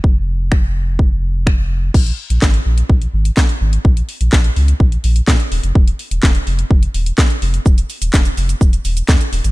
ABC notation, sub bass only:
X:1
M:4/4
L:1/16
Q:1/4=126
K:Ebdor
V:1 name="Sub bass" clef=bass
F,,,16 | B,,,2 z B,,, A,,,2 B,,,2 B,,,2 A,,,2 z2 A,,,2 | B,,,2 z B,,, B,,,2 D,,2 B,,,2 B,,,2 B,, z E,,, F,,, | E,,,2 z E,,, E,,,2 F,,,2 F,,,2 E,,,2 z2 F,,,2 |
E,,,2 z E,,, E,,,2 F,,,2 E,,,2 E,,,2 E,, z E,,, A,,, |]